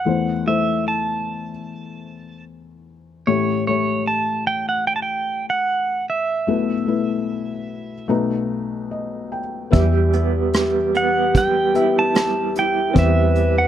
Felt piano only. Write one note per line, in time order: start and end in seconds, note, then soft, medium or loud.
0.05 3.24 E2 soft
0.05 3.23 E3 soft
0.05 0.32 A3 soft
0.05 0.32 E4 soft
0.05 0.33 C5 medium
0.46 1.50 A3 soft
0.46 1.50 E4 soft
0.46 1.51 C5 soft
3.27 6.44 A1 soft
3.27 6.44 A2 soft
3.27 3.53 A3 medium
3.27 3.54 G4 soft
3.27 3.54 C#5 medium
3.67 4.71 A3 medium
3.67 4.72 G4 soft
3.67 4.72 C#5 soft
6.47 8.06 B1 soft
6.47 8.06 B2 soft
6.47 6.74 A3 medium
6.47 6.74 E4 soft
6.47 6.75 B4 medium
6.86 7.92 A3 soft
6.86 7.93 E4 soft
6.86 7.93 B4 soft
8.08 9.68 B1 medium
8.08 9.69 B2 medium
8.08 9.39 A3 medium
8.08 9.40 D#4 medium
8.08 9.40 B4 medium
8.91 9.29 D#5 soft
9.32 9.70 G5 soft
9.71 12.91 E2 medium
9.71 12.91 E3 medium
9.71 10.76 B3 medium
9.71 10.77 G4 medium
9.71 10.77 E5 medium
11.74 12.53 B3 medium
11.74 12.53 G4 medium
11.74 12.54 E5 medium
12.94 13.68 E2 soft
12.94 13.68 E3 soft
12.94 13.68 C4 medium
12.94 13.68 B4 medium
12.94 13.68 E5 medium